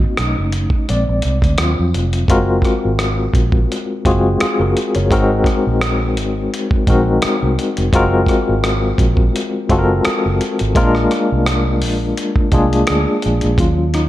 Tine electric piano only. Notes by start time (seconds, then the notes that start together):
Already playing: A#3 C4 D#4 F#4 D#5
0.19 A3 C#4 D#4
0.89 G#3 C4 D5
1.59 F#3 C4 F4
2.29 G#3 C4 F4 F#4 A#4
4.06 G#3 C4 F4 F#4 G#4
4.42 F4 G#4
4.61 F#4 A#4
4.96 A#4 C#5
5.11 G#3 C4 D#4 F#4 A#4
6.88 G#3 C4 D#4 F#4 A#4
7.93 G#3 C4 F4 F#4 A#4
9.70 G#3 C4 F4 F#4 A4
9.79 A#4
10.76 G#3 A#3 C4 F4 A#4
10.83 D4
12.53 G#3 A#3 D4 F4 G#4
13.59 F#3 C#4 F4
13.95 D#4